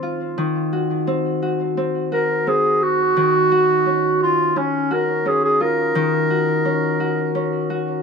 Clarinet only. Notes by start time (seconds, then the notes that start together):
2.13 A#4
2.48 G#4
2.83 F#4
4.22 F4
4.58 C#4
4.93 A#4
5.27 G#4
5.44 G#4
5.62 A#4